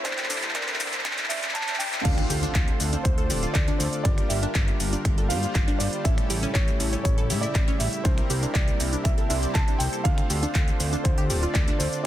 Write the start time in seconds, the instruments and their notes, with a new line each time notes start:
Already playing: analog synth pad E4, riser
0.03 analog synth bass C2, analog synth pad C3 G3 A#3, supersaw synth D3 D4 E4 A4 C5, synth pluck D4, grand piano C5, kick, clap, closed hi-hat, shaker
0.11 clap
0.18 clap, closed hi-hat, shaker
0.24 clap
0.30 analog synth bass C2, supersaw synth D3 D4 E4 A4 C5, synth pluck D4, clap, open hi-hat, shaker
0.36 clap
0.43 clap, closed hi-hat, shaker
0.49 clap
0.53 analog synth bass C2, supersaw synth D3 D4 E4 A4 C5, synth pluck D4, grand piano A#4, kick, clap, closed hi-hat, shaker
0.61 clap
0.68 clap, closed hi-hat, shaker
0.74 clap
0.80 analog synth bass C2, supersaw synth D3 D4 E4 A4 C5, synth pluck D4, clap, open hi-hat, shaker
0.86 clap
0.93 clap, closed hi-hat, shaker
0.99 clap
1.05 analog synth bass C2, supersaw synth D3 D4 E4 A4 C5, synth pluck D4, kick, clap, closed hi-hat, shaker
1.11 clap
1.18 clap, closed hi-hat, shaker
1.24 clap
1.28 analog synth bass C2, supersaw synth D3 D4 E4 A4 C5, synth pluck D4, grand piano E5, clap, open hi-hat, shaker
1.36 clap
1.43 clap, closed hi-hat, shaker
1.49 clap
1.53 analog synth bass C2, supersaw synth D3 D4 E4 A4 C5, synth pluck D4, grand piano A5, kick, clap, closed hi-hat, shaker
1.61 clap
1.68 clap, closed hi-hat, shaker
1.74 clap
1.79 analog synth bass C2, supersaw synth D3 D4 E4 A4 C5, synth pluck D4, grand piano G5, clap, open hi-hat, shaker
1.86 clap
1.93 clap, closed hi-hat, shaker
1.99 clap
2.03 analog synth bass D2, supersaw synth D3 D4 F4 A4 C5, analog synth pad D3 A3 C4 F4, synth pluck D4, grand piano F5, kick, closed hi-hat, crash, impact, shaker
2.18 finger snap, closed hi-hat, shaker
2.30 analog synth bass D2, synth pluck G4, open hi-hat, shaker
2.43 synth pluck D4, closed hi-hat, shaker
2.55 analog synth bass D2, kick, clap, closed hi-hat, shaker
2.68 closed hi-hat, shaker
2.80 analog synth bass D2, open hi-hat, shaker
2.93 synth pluck D4, closed hi-hat, shaker
3.03 analog synth bass D2, grand piano C5, kick, closed hi-hat, shaker
3.18 synth pluck A4, closed hi-hat, shaker
3.30 analog synth bass D1, supersaw synth D3 D4 F4 A4 D5, synth pluck G4, open hi-hat, shaker
3.43 synth pluck F4, closed hi-hat, shaker
3.53 analog synth bass D2, grand piano D5, kick, clap, closed hi-hat, shaker
3.68 synth pluck D4, closed hi-hat, shaker
3.78 analog synth bass D2, grand piano C5, open hi-hat, shaker
3.93 closed hi-hat, shaker
4.04 analog synth bass G1, analog synth pad D3 G3 A#3, synth pluck D4, supersaw synth D4 F4 G4 A#4, grand piano D5, kick, closed hi-hat, shaker
4.18 finger snap, closed hi-hat, shaker
4.28 analog synth bass G1, synth pluck G4, grand piano E5, open hi-hat, shaker
4.43 synth pluck D4, closed hi-hat, shaker
4.55 analog synth bass G1, kick, clap, closed hi-hat, shaker
4.68 closed hi-hat, shaker
4.80 analog synth bass G1, open hi-hat, shaker
4.93 synth pluck D4, closed hi-hat, shaker
5.05 analog synth bass G1, finger snap, kick, closed hi-hat, shaker
5.18 synth pluck A4, closed hi-hat, shaker
5.29 analog synth bass G2, supersaw synth G3 D4 F4 G4 C5, synth pluck G4, grand piano F5, open hi-hat, shaker
5.43 synth pluck F4, closed hi-hat, shaker
5.55 analog synth bass G1, kick, clap, closed hi-hat, shaker
5.68 synth pluck D4, closed hi-hat, shaker
5.78 analog synth bass G1, grand piano D5, open hi-hat, shaker
5.93 closed hi-hat, shaker
6.04 analog synth bass A1, analog synth pad C#3 A3 E4, synth pluck C#4, supersaw synth C#4 E4 A4, grand piano E5, kick, closed hi-hat, shaker
6.18 finger snap, closed hi-hat, shaker
6.30 analog synth bass A1, synth pluck G4, open hi-hat, shaker
6.43 synth pluck C#4, closed hi-hat, shaker
6.53 analog synth bass A1, grand piano C#5, kick, clap, closed hi-hat, shaker
6.68 closed hi-hat, shaker
6.80 analog synth bass A1, open hi-hat, shaker
6.93 synth pluck C#4, closed hi-hat, shaker
7.03 analog synth bass A1, grand piano C#5, kick, closed hi-hat, shaker
7.18 synth pluck A4, closed hi-hat, shaker
7.30 analog synth bass A2, supersaw synth A2 C#3 E4 G4 E5, synth pluck G4, open hi-hat, shaker
7.41 synth pluck E4, grand piano D5, closed hi-hat, shaker
7.55 analog synth bass A1, kick, clap, closed hi-hat, shaker
7.68 synth pluck C#4, closed hi-hat, shaker
7.79 analog synth bass A1, grand piano E5, open hi-hat, shaker
7.93 closed hi-hat, shaker
8.04 analog synth bass C2, analog synth pad C3 G3 A#3 E4, synth pluck D4, supersaw synth G4, grand piano C5, kick, closed hi-hat, shaker
8.18 finger snap, closed hi-hat, shaker
8.30 analog synth bass C2, synth pluck G4, open hi-hat, shaker
8.43 synth pluck D4, closed hi-hat, shaker
8.54 analog synth bass C2, grand piano D5, kick, clap, closed hi-hat, shaker
8.68 closed hi-hat, shaker
8.80 analog synth bass C2, open hi-hat, shaker
8.93 synth pluck D4, closed hi-hat, shaker
9.04 analog synth bass C2, grand piano E5, finger snap, kick, closed hi-hat, shaker
9.18 synth pluck A4, closed hi-hat, shaker
9.29 analog synth bass C2, supersaw synth C3 C4 E4 G4 C5, synth pluck D4, grand piano E5, open hi-hat, shaker
9.43 synth pluck D5, closed hi-hat, shaker
9.54 analog synth bass C2, grand piano A5, kick, clap, closed hi-hat, shaker
9.68 synth pluck D4, closed hi-hat, shaker
9.78 analog synth bass C2, grand piano G5, open hi-hat, shaker
9.93 synth pluck A4, closed hi-hat, shaker
10.04 analog synth bass D2, supersaw synth D3 D4, analog synth pad D3 A3 C4 F4, synth pluck D4, grand piano F5, kick, closed hi-hat, shaker
10.18 finger snap, closed hi-hat, shaker
10.30 analog synth bass D2, synth pluck G4, open hi-hat, shaker
10.43 synth pluck D4, closed hi-hat, shaker
10.55 analog synth bass D2, kick, clap, closed hi-hat, shaker
10.68 closed hi-hat, shaker
10.80 analog synth bass D2, open hi-hat, shaker
10.93 synth pluck D4, closed hi-hat, shaker
11.04 analog synth bass D2, grand piano C5, kick, closed hi-hat, shaker
11.18 synth pluck G4, closed hi-hat, shaker
11.30 analog synth bass D1, supersaw synth D3 D4 F4 A4 D5, synth pluck G4, open hi-hat, shaker
11.43 synth pluck F4, closed hi-hat, shaker
11.54 analog synth bass D2, grand piano D5, kick, clap, closed hi-hat, shaker
11.68 synth pluck D4, closed hi-hat, shaker
11.79 analog synth bass D2, grand piano C5, open hi-hat, shaker
11.93 closed hi-hat, shaker